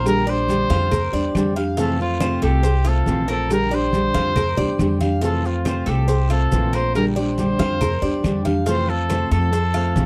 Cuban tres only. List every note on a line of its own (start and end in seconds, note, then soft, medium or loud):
0.00 0.26 A#4 medium
0.27 0.69 D5 medium
0.70 0.91 F4 medium
0.91 1.13 A#4 medium
1.13 1.55 D5 medium
1.56 1.77 F5 medium
1.77 2.19 F4 medium
2.20 2.42 C5 medium
2.42 2.63 A4 medium
2.63 2.85 C5 medium
2.85 3.27 F4 medium
3.28 3.70 A#4 medium
3.71 4.13 D5 medium
4.14 4.36 F4 medium
4.36 4.57 A#4 medium
4.57 5.00 D5 medium
5.01 5.22 F5 medium
5.21 5.64 F4 medium
5.65 5.86 C5 medium
5.86 6.07 A4 medium
6.08 6.29 C5 medium
6.30 6.72 F4 medium
6.73 7.15 A#4 medium
7.16 7.58 D5 medium
7.59 7.80 F4 medium
7.81 8.02 A#4 medium
8.02 8.44 D5 medium
8.45 8.66 F5 medium
8.66 9.08 F4 medium
9.10 9.31 C5 medium
9.32 9.52 A4 medium
9.53 9.74 C5 medium
9.74 10.06 F4 medium